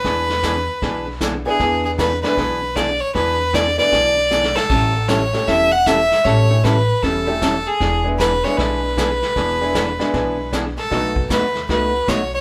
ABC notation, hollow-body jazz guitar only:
X:1
M:4/4
L:1/16
Q:"Swing" 1/4=155
K:Emix
V:1 name="Hollow-body jazz guitar"
[E,B,DG]2 z2 [E,B,DG] z3 [E,B,DG]2 z2 [E,B,DG] z3 | [E,B,DG]2 z2 [E,B,DG] z3 [E,B,DG]2 z2 [E,B,DG] z3 | [E,B,DG]2 z2 [E,B,DG] z3 [E,B,DG]2 z2 [E,B,DG] z3 | [E,=G,CEA]2 z2 [E,G,CEA] z3 [E,G,CEA]2 z2 [E,G,CEA] z3 |
[E,=G,CEA]2 z2 [E,G,CEA] z3 [E,G,CEA]2 z2 [E,G,CEA] z3 | [E,B,DG]2 z2 [E,B,DG] z3 [E,B,DG]2 z2 [E,B,DG] z3 | [E,B,DG]2 z2 [E,B,DG] z3 [E,B,DG]2 z2 [E,B,DG] z3 | [B,,F,A,^DF]2 z2 [B,,F,A,DF] z3 [B,,F,A,DF]2 z2 [B,,F,A,DF] z3 |]